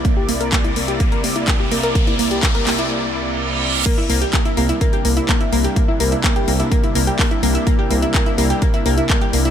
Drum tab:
CC |----------------|----------------|x---------------|----------------|
HH |x-oxxxoxxxoxx-ox|xxoxxxox--------|x-oxxxoxxxoxxxox|x-oxxxoxxxoxoxox|
CP |----x-------x---|----x-x---------|----x-------x---|----x-------x---|
BD |o---o---o---o---|o---o-----------|o---o---o---o---|o---o---o---o---|

CC |----------------|
HH |x-oxxxoxxxoxxxox|
CP |----x-------x---|
BD |o---o---o---o---|